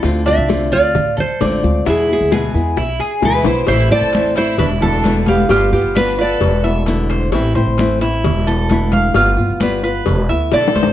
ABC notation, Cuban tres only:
X:1
M:4/4
L:1/8
Q:1/4=132
K:Ephr
V:1 name="Cuban tres"
A D2 F2 A d2 | E2 ^G2 E G2 c | E c2 E2 A2 f | F2 B B2 e2 c |
E c2 E2 A2 f | F2 B B2 e2 c |]